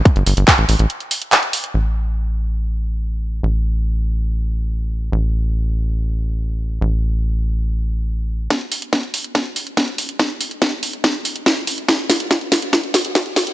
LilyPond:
<<
  \new Staff \with { instrumentName = "Analog synth bass" } { \clef bass \time 4/4 \key g \mixolydian \tempo 4 = 142 r16 g,,16 g,,16 g,,16 r16 a,,16 a,,16 a,,16 r2 | a,,1 | a,,1 | a,,1 |
a,,1 | r1 | r1 | r1 | }
  \new DrumStaff \with { instrumentName = "Drums" } \drummode { \time 4/4 <hh bd>16 hh16 hho16 hh16 <hc hh bd>16 hh16 hho16 hh16 hh16 hh16 hho16 hh16 <hc hh>16 hh16 hho16 hh16 | r4 r4 r4 r4 | r4 r4 r4 r4 | r4 r4 r4 r4 |
r4 r4 r4 r4 | <hh bd sn>16 hh16 hho16 hh16 <hh bd sn>16 hh16 hho16 hh16 <hh bd sn>16 hh16 hho16 hh16 <hh bd sn>16 hh16 hho16 hh16 | <hh bd sn>16 hh16 hho16 hh16 <hh bd sn>16 hh16 hho16 hh16 <hh bd sn>16 hh16 hho16 hh16 <hh bd sn>16 hh16 hho16 hh16 | <hh bd sn>16 hh16 <hho sn>16 hh16 <hh bd sn>16 hh16 <hho sn>16 hh16 <hh bd sn>16 hh16 <hho sn>16 hh16 <hh bd sn>16 hh16 <hho sn>16 hh16 | }
>>